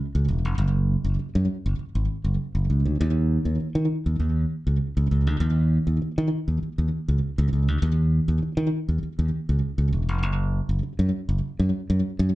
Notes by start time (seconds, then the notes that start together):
0.15 C#2
0.29 E1
0.45 F1
0.58 F#1
1.04 F#1
1.19 muted fingered electric bass stroke
1.35 F#2
1.66 F#1
1.79 muted fingered electric bass stroke
1.95 G#1
2.24 F#1
2.55 F#1
2.70 C#2
2.85 D2
3.01 D#2
3.45 D#2
3.60 muted fingered electric bass stroke
3.75 D#3
4.06 D#2
4.20 D#2
4.67 C#2
4.97 C#2
5.11 C#2
5.27 D2
5.40 D#2
5.87 D#2
6.02 muted fingered electric bass stroke
6.18 D#3
6.48 D#2
6.63 muted fingered electric bass stroke
6.78 D#2
7.08 C#2
7.38 C#2
7.53 C#2
7.68 D2
7.82 D#2
8.28 D#2
8.43 muted fingered electric bass stroke
8.57 D#3
8.89 D#2
9.03 muted fingered electric bass stroke
9.19 D#2
9.49 C#2
9.78 C#2
9.93 E1
10.09 F1
10.23 F#1
10.69 F#1
10.83 muted fingered electric bass stroke
10.99 F#2
11.29 F#1
11.59 F#2
11.90 F#2
12.19 F#2